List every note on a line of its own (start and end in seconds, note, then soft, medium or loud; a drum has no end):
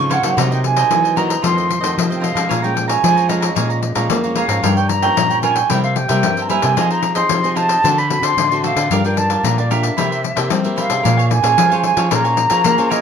0.00 0.35 G#2 medium
0.00 0.18 C#3 medium
0.00 0.20 F3 medium
0.00 0.20 C4 medium
0.00 0.21 D#4 medium
0.00 0.13 C#6 loud
0.10 0.23 F4 medium
0.10 0.23 C5 medium
0.10 0.23 C#5 medium
0.10 0.22 F5 medium
0.10 0.51 F#5 medium
0.10 pandeiro medium
0.23 0.35 C#3 medium
0.23 0.46 F#3 medium
0.23 0.46 A#3 medium
0.23 0.46 D#4 medium
0.23 0.36 C5 soft
0.23 0.36 C#5 soft
0.23 0.36 F5 medium
0.23 pandeiro medium
0.37 0.83 C3 medium
0.37 0.88 C3 medium
0.37 0.49 F#4 medium
0.37 0.50 A#4 medium
0.37 0.50 C5 medium
0.37 0.50 D#5 medium
0.37 pandeiro medium
0.51 0.87 F#3 medium
0.51 0.87 A#3 medium
0.51 0.87 D#4 medium
0.51 0.64 A#4 soft
0.51 0.64 C5 soft
0.51 0.63 D#5 soft
0.51 0.58 G5 medium
0.51 pandeiro soft
0.64 1.18 G#5 loud
0.64 muted cavaquinho stroke soft
0.64 pandeiro medium
0.77 1.03 A#4 medium
0.77 1.03 C5 medium
0.77 1.02 D#5 medium
0.77 pandeiro medium
0.91 1.42 C3 soft
0.91 1.36 E3 medium
0.91 1.14 F#3 medium
0.91 1.14 A#3 medium
0.91 1.14 D#4 medium
0.91 pandeiro medium
1.04 1.15 A#4 soft
1.04 1.16 C5 soft
1.04 1.16 D#5 soft
1.04 pandeiro soft
1.16 1.33 F#3 medium
1.16 1.33 A#3 medium
1.16 1.33 D#4 medium
1.16 1.29 F#4 medium
1.16 1.29 A#4 medium
1.16 1.28 C5 medium
1.16 1.27 D#5 medium
1.16 1.44 A#5 medium
1.16 pandeiro medium
1.28 1.42 A#4 soft
1.28 1.42 C5 soft
1.28 1.42 D#5 soft
1.28 pandeiro medium
1.42 1.95 F2 medium
1.42 1.69 D#3 medium
1.42 1.78 F3 medium
1.42 1.69 A3 soft
1.42 1.70 C4 medium
1.42 1.55 F4 medium
1.42 1.56 A4 medium
1.42 1.56 C5 medium
1.42 1.55 D#5 medium
1.42 1.94 C6 medium
1.42 pandeiro medium
1.56 1.68 A4 soft
1.56 1.67 C5 soft
1.56 1.68 D#5 soft
1.56 pandeiro soft
1.68 muted cavaquinho stroke soft
1.68 pandeiro medium
1.81 2.06 D#3 medium
1.81 1.95 F3 medium
1.81 2.06 A3 medium
1.81 2.07 C4 medium
1.81 2.09 A4 medium
1.81 2.08 C5 medium
1.81 2.08 D#5 medium
1.81 pandeiro medium
1.98 2.48 C3 medium
1.98 2.32 F3 medium
1.98 pandeiro medium
2.09 2.33 D#3 medium
2.09 2.33 A3 medium
2.09 2.34 C4 medium
2.09 2.20 A4 soft
2.09 2.20 C5 soft
2.09 2.21 D#5 soft
2.09 pandeiro soft
2.15 2.25 G5 medium
2.20 2.35 F4 medium
2.20 2.34 A4 medium
2.20 2.34 C5 medium
2.20 2.33 D#5 medium
2.20 2.65 F5 medium
2.20 pandeiro medium
2.34 2.48 F3 medium
2.34 2.59 F3 medium
2.34 2.59 G#3 medium
2.34 2.59 C#4 medium
2.34 2.49 A4 soft
2.34 2.48 C5 soft
2.34 2.48 D#5 soft
2.34 pandeiro medium
2.49 3.01 A#2 medium
2.49 2.96 A#2 medium
2.49 2.62 G#4 medium
2.49 2.62 C#5 medium
2.49 2.62 F5 medium
2.49 2.61 A#5 medium
2.49 pandeiro medium
2.62 3.00 F3 medium
2.62 3.00 G#3 soft
2.62 3.00 C#4 medium
2.62 2.74 C#5 soft
2.62 2.74 F5 soft
2.62 2.87 G5 medium
2.62 2.75 A#5 soft
2.62 pandeiro soft
2.75 muted cavaquinho stroke soft
2.75 pandeiro medium
2.88 3.15 C#5 medium
2.88 3.15 F5 medium
2.88 3.30 G#5 medium
2.88 3.15 A#5 medium
2.88 pandeiro medium
3.03 3.54 F2 medium
3.03 3.26 F3 soft
3.03 3.49 F3 medium
3.03 3.26 G#3 medium
3.03 3.26 C#4 medium
3.03 pandeiro medium
3.16 3.28 C#5 soft
3.16 3.29 F5 soft
3.16 3.29 A#5 soft
3.16 pandeiro soft
3.29 3.52 F3 medium
3.29 3.52 G#3 medium
3.29 3.53 C#4 medium
3.29 3.42 G#4 medium
3.29 3.41 C#5 medium
3.29 4.10 D#5 medium
3.29 3.41 F5 medium
3.29 3.40 A#5 medium
3.29 pandeiro medium
3.41 3.54 C#5 soft
3.41 3.55 F5 soft
3.41 3.55 A#5 soft
3.41 pandeiro medium
3.55 4.07 A#2 medium
3.55 3.91 A#2 medium
3.55 3.92 F3 medium
3.55 3.93 G#3 medium
3.55 3.93 C#4 medium
3.55 3.68 G#4 medium
3.55 3.69 C#5 medium
3.55 3.68 F5 medium
3.55 3.68 A#5 medium
3.55 pandeiro medium
3.69 3.81 C#5 soft
3.69 3.81 F5 soft
3.69 3.81 A#5 soft
3.69 pandeiro soft
3.82 muted cavaquinho stroke soft
3.82 pandeiro medium
3.95 4.08 A#2 medium
3.95 4.19 F3 medium
3.95 4.19 G#3 medium
3.95 4.19 C#4 medium
3.95 4.23 C#5 soft
3.95 4.22 F5 medium
3.95 4.22 A#5 medium
3.95 pandeiro medium
4.10 4.61 F2 medium
4.10 4.45 A#3 medium
4.10 pandeiro medium
4.24 4.47 F3 medium
4.24 4.47 G#3 medium
4.24 4.47 C#4 medium
4.24 4.35 C#5 soft
4.24 4.36 F5 soft
4.24 4.36 A#5 soft
4.24 pandeiro soft
4.35 4.49 G#4 medium
4.35 4.49 C#5 medium
4.35 4.74 F5 medium
4.35 4.48 F5 medium
4.35 4.47 A#5 medium
4.35 pandeiro medium
4.48 4.61 G#2 medium
4.48 4.72 F3 medium
4.48 4.72 A#3 medium
4.48 4.72 C#4 medium
4.48 4.62 C#5 soft
4.48 4.62 F5 soft
4.48 4.62 A#5 medium
4.48 pandeiro medium
4.63 5.14 G2 medium
4.63 5.09 G2 medium
4.63 4.76 F4 medium
4.63 4.76 A#4 medium
4.63 4.76 C#5 medium
4.63 4.76 G5 medium
4.63 pandeiro medium
4.76 4.89 A#4 soft
4.76 4.89 C#5 soft
4.76 4.89 G5 medium
4.76 4.89 G5 soft
4.76 pandeiro soft
4.88 5.41 A#5 loud
4.88 muted cavaquinho stroke soft
4.88 pandeiro medium
5.03 5.39 F3 medium
5.03 5.39 A#3 medium
5.03 5.40 C#4 medium
5.03 5.29 A#4 medium
5.03 5.29 C#5 medium
5.03 5.29 G5 medium
5.03 pandeiro medium
5.16 5.68 G2 medium
5.16 5.63 A#2 medium
5.16 pandeiro medium
5.30 5.42 A#4 soft
5.30 5.43 C#5 soft
5.30 5.42 G5 soft
5.30 pandeiro soft
5.42 5.59 F3 medium
5.42 5.59 A#3 medium
5.42 5.59 C#4 medium
5.42 5.56 F4 medium
5.42 5.56 A#4 medium
5.42 5.55 C#5 medium
5.42 5.55 G5 medium
5.42 5.71 G#5 medium
5.42 pandeiro medium
5.56 5.68 A#4 soft
5.56 5.69 C#5 soft
5.56 5.69 G5 soft
5.56 pandeiro medium
5.69 6.21 C3 medium
5.69 6.05 C3 medium
5.69 5.95 G3 medium
5.69 5.96 A#3 medium
5.69 5.82 E4 medium
5.69 5.96 E4 medium
5.69 5.82 A#4 medium
5.69 5.83 C5 medium
5.69 5.82 E5 medium
5.69 5.82 G5 loud
5.69 pandeiro medium
5.82 5.95 A#4 soft
5.82 5.95 C5 soft
5.82 5.95 E5 soft
5.82 5.97 F5 medium
5.82 pandeiro soft
5.96 6.43 G5 medium
5.96 muted cavaquinho stroke soft
5.96 pandeiro medium
6.08 6.21 C3 medium
6.08 6.46 G3 medium
6.08 6.46 A#3 medium
6.08 6.46 E4 medium
6.08 6.36 A#4 medium
6.08 6.36 C5 medium
6.08 6.35 E5 medium
6.08 pandeiro medium
6.23 6.75 G2 medium
6.23 6.58 C4 medium
6.23 pandeiro medium
6.37 6.49 A#4 soft
6.37 6.49 C5 soft
6.37 6.49 E5 soft
6.37 pandeiro soft
6.42 6.50 A#5 medium
6.48 6.72 G3 medium
6.48 6.73 A#3 medium
6.48 6.62 E4 medium
6.48 6.73 E4 medium
6.48 6.63 A#4 medium
6.48 6.62 C5 medium
6.48 6.62 E5 medium
6.48 6.92 G#5 medium
6.48 pandeiro medium
6.62 6.75 C3 medium
6.62 6.76 A#4 soft
6.62 6.75 C5 soft
6.62 6.76 E5 medium
6.62 pandeiro medium
6.76 7.28 F3 medium
6.76 7.23 F3 loud
6.76 7.13 C4 medium
6.76 7.13 D#4 medium
6.76 6.89 F4 medium
6.76 6.89 G#4 medium
6.76 7.14 G#4 medium
6.76 6.89 C5 medium
6.76 6.89 D#5 medium
6.76 pandeiro medium
6.90 7.01 G#4 soft
6.90 7.02 C5 soft
6.90 7.02 D#5 soft
6.90 7.15 A#5 medium
6.90 pandeiro soft
7.03 muted cavaquinho stroke soft
7.03 pandeiro medium
7.15 7.39 C4 medium
7.15 7.39 D#4 medium
7.15 7.42 G#4 medium
7.15 7.39 G#4 medium
7.15 7.42 C5 medium
7.15 7.42 D#5 medium
7.15 7.58 C6 medium
7.15 pandeiro medium
7.29 7.81 C3 medium
7.29 7.76 F3 medium
7.29 pandeiro medium
7.43 7.80 C4 medium
7.43 7.80 D#4 medium
7.43 7.55 G#4 soft
7.43 7.80 G#4 medium
7.43 7.55 C5 soft
7.43 7.55 D#5 soft
7.43 pandeiro soft
7.55 7.69 F4 medium
7.55 7.69 G#4 medium
7.55 7.68 C5 medium
7.55 7.67 D#5 medium
7.55 7.99 A5 loud
7.55 pandeiro medium
7.68 7.83 G#4 soft
7.68 7.82 C5 soft
7.68 7.82 D#5 medium
7.68 pandeiro medium
7.83 8.34 D3 medium
7.83 8.18 D3 medium
7.83 7.99 C4 medium
7.83 7.96 F#4 medium
7.83 8.00 F#4 medium
7.83 8.00 A4 medium
7.83 7.97 A4 medium
7.83 7.97 C5 medium
7.83 7.96 D5 medium
7.83 pandeiro medium
7.98 8.09 A4 soft
7.98 8.09 C5 soft
7.98 8.09 D5 soft
7.98 8.25 B5 medium
7.98 pandeiro soft
8.10 8.46 C4 medium
8.10 8.46 F#4 medium
8.10 8.47 A4 medium
8.10 muted cavaquinho stroke soft
8.10 pandeiro medium
8.22 8.34 D3 medium
8.22 8.50 A4 medium
8.22 8.49 C5 medium
8.22 8.49 D5 medium
8.22 8.64 C6 medium
8.22 pandeiro medium
8.37 8.88 A2 medium
8.37 8.71 D3 medium
8.37 pandeiro medium
8.51 8.87 C4 medium
8.51 8.87 F#4 medium
8.51 8.63 A4 soft
8.51 8.87 A4 medium
8.51 8.63 C5 soft
8.51 8.63 D5 soft
8.51 pandeiro soft
8.63 8.76 F#4 medium
8.63 8.77 A4 medium
8.63 8.77 C5 medium
8.63 8.76 D5 medium
8.63 9.06 F5 medium
8.63 pandeiro medium
8.76 8.88 D3 medium
8.76 8.90 A4 soft
8.76 8.90 C5 soft
8.76 8.90 D5 soft
8.76 pandeiro medium
8.90 9.36 G2 medium
8.90 9.42 G3 medium
8.90 9.00 D4 medium
8.90 9.00 F4 medium
8.90 9.03 G4 medium
8.90 9.03 A#4 medium
8.90 9.01 A#4 medium
8.90 9.04 D5 medium
8.90 9.04 F5 medium
8.90 pandeiro medium
9.04 9.40 D4 medium
9.04 9.41 F4 medium
9.04 9.41 A#4 medium
9.04 9.17 A#4 soft
9.04 9.17 D5 soft
9.04 9.17 F5 soft
9.04 9.19 G5 medium
9.04 pandeiro soft
9.17 9.45 A5 medium
9.17 muted cavaquinho stroke soft
9.17 pandeiro medium
9.30 9.57 A#4 medium
9.30 9.56 D5 medium
9.30 9.56 F5 medium
9.30 pandeiro medium
9.44 9.89 A#2 medium
9.44 9.95 D3 medium
9.44 9.60 D4 medium
9.44 9.60 F4 soft
9.44 9.61 A#4 medium
9.44 9.60 A#5 medium
9.44 pandeiro medium
9.58 9.70 A#4 soft
9.58 9.72 D5 medium
9.58 9.70 D5 soft
9.58 9.70 F5 soft
9.58 pandeiro soft
9.70 9.93 D4 medium
9.70 9.93 F4 medium
9.70 9.83 G4 medium
9.70 9.83 A#4 medium
9.70 9.94 A#4 medium
9.70 9.82 D5 medium
9.70 10.49 E5 medium
9.70 9.82 F5 medium
9.70 pandeiro medium
9.83 9.96 A#4 soft
9.83 9.96 D5 soft
9.83 9.96 F5 soft
9.83 pandeiro medium
9.97 10.32 C3 medium
9.97 10.49 C3 medium
9.97 10.23 A#3 medium
9.97 10.09 E4 medium
9.97 10.23 E4 medium
9.97 10.23 G4 medium
9.97 10.10 A#4 medium
9.97 10.10 C5 medium
9.97 10.09 E5 medium
9.97 pandeiro medium
10.10 10.22 A#4 soft
10.10 10.22 C5 soft
10.10 10.23 E5 medium
10.10 pandeiro soft
10.23 muted cavaquinho stroke soft
10.23 pandeiro medium
10.36 10.49 C3 medium
10.36 10.59 A#3 medium
10.36 10.60 E4 medium
10.36 10.60 G4 medium
10.36 10.63 A#4 medium
10.36 10.63 C5 medium
10.36 10.62 E5 medium
10.36 pandeiro medium
10.50 11.02 G3 medium
10.50 10.85 C4 medium
10.50 pandeiro medium
10.63 10.87 A#3 medium
10.63 10.87 E4 medium
10.63 10.87 G4 medium
10.63 10.75 A#4 soft
10.63 10.76 C5 soft
10.63 10.76 E5 soft
10.63 pandeiro soft
10.76 10.89 E4 medium
10.76 10.89 A#4 medium
10.76 10.89 C5 medium
10.76 10.88 E5 medium
10.76 11.33 F5 medium
10.76 pandeiro medium
10.89 11.02 C3 medium
10.89 11.13 C#4 medium
10.89 11.13 G#4 medium
10.89 11.02 A#4 soft
10.89 11.13 C5 medium
10.89 11.03 C5 soft
10.89 11.02 E5 medium
10.89 pandeiro medium
11.03 11.39 A#2 medium
11.03 11.55 A#3 medium
11.03 11.16 A#4 medium
11.03 11.16 C#5 medium
11.03 11.16 F5 medium
11.03 11.16 G#5 medium
11.03 pandeiro medium
11.17 11.29 C#5 medium
11.17 11.29 F5 medium
11.17 11.29 G#5 medium
11.17 pandeiro soft
11.30 11.84 G#5 loud
11.30 muted cavaquinho stroke soft
11.30 pandeiro medium
11.42 11.55 A#2 medium
11.42 11.66 C#4 medium
11.42 11.66 G#4 medium
11.42 11.67 C5 medium
11.42 11.56 C#5 soft
11.42 11.56 F5 medium
11.42 11.56 G#5 medium
11.42 pandeiro medium
11.57 11.92 F3 medium
11.57 12.09 F3 medium
11.57 11.70 A#4 soft
11.57 11.70 C#5 soft
11.57 11.70 F5 soft
11.57 11.69 G#5 medium
11.57 pandeiro medium
11.70 11.94 C#4 medium
11.70 11.94 G#4 medium
11.70 11.94 C5 medium
11.70 11.97 C#5 medium
11.70 11.96 F5 medium
11.70 11.95 G#5 medium
11.70 pandeiro soft
11.83 12.14 G#5 medium
11.83 pandeiro medium
11.97 12.09 F3 medium
11.97 12.06 C#4 medium
11.97 12.07 G#4 medium
11.97 12.07 C5 medium
11.97 12.10 C#5 medium
11.97 12.10 F5 medium
11.97 12.09 G#5 medium
11.97 pandeiro medium
12.10 12.46 A#2 loud
12.10 12.62 A#3 medium
12.10 12.47 C#4 medium
12.10 12.47 G#4 medium
12.10 12.23 A#4 medium
12.10 12.47 C5 medium
12.10 12.23 C#5 medium
12.10 12.23 F5 medium
12.10 12.23 G#5 medium
12.10 12.92 A#5 loud
12.10 pandeiro medium
12.24 12.36 C#5 medium
12.24 12.36 F5 medium
12.24 12.37 G#5 medium
12.24 pandeiro soft
12.37 muted cavaquinho stroke soft
12.37 pandeiro medium
12.50 12.62 F3 medium
12.50 12.73 C#4 medium
12.50 12.73 G#4 medium
12.50 12.73 C5 medium
12.50 12.77 C#5 medium
12.50 12.77 F5 medium
12.50 12.76 G#5 medium
12.50 pandeiro medium
12.64 13.01 F3 medium
12.64 12.99 A#3 medium
12.64 pandeiro medium
12.78 13.01 C#4 medium
12.78 13.01 G#4 medium
12.78 13.01 C5 medium
12.78 12.89 C#5 medium
12.78 12.89 F5 medium
12.78 12.90 G#5 medium
12.78 pandeiro soft
12.90 13.01 A#4 medium
12.90 13.01 C#5 medium
12.90 13.01 D#5 medium
12.90 13.01 F5 medium
12.90 13.01 G#5 medium
12.90 pandeiro medium